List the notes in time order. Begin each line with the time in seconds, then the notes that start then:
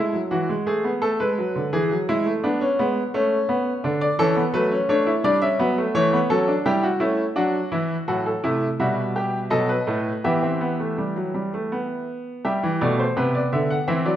Already playing: G#3 E4
0.13 F#3
0.31 E3 F#4
0.49 G#3
0.66 A3 G#4
0.84 B3
1.01 A3 A4
1.20 G#3 B4
1.38 F#3
1.55 D3
1.73 E3 G#4
1.91 F#3
2.09 G#3 E4
2.26 A3
2.44 B3 D4
2.61 C#4
2.79 G#3 B3
3.14 A3 C#4
3.49 B3
3.84 D3 D4
4.01 D5
4.19 E3 C#4 A4
4.36 B3
4.54 F#3 A3 B4
4.71 C#4
4.89 A3 D4 C#5
5.07 E4
5.24 G3 D4 D5
5.42 C#4 E5
5.59 F#3 B3
5.78 A3
5.95 E3 A3 C#5
6.13 B3
6.30 F#3 C#4 A4
6.48 D4
6.66 G3 E4 G4
6.83 F#4
7.00 A3 C#4 E4
7.36 F#3 D4 F#4
7.72 E3 E4
8.08 A2 F#3 F#4 A4
8.26 A4
8.44 C3 A3 E4
8.80 B2 G3 F#4 E5
9.16 G4
9.50 B2 F#3 A4 D#5
9.69 B4
9.87 A2 A3
10.24 E3 B3 G4 E5
10.43 C4
10.61 B3
10.80 A3
10.98 G3
11.16 F#3
11.34 G3
11.54 A3
11.72 B3
12.45 G3 G4 E5
12.63 E3
12.81 B2 A3 D5
12.99 C5
13.17 C3 B3 B4
13.35 D5
13.52 D3 E5
13.70 F#5
13.88 E3 C4 E4 E5
14.05 F#3 D5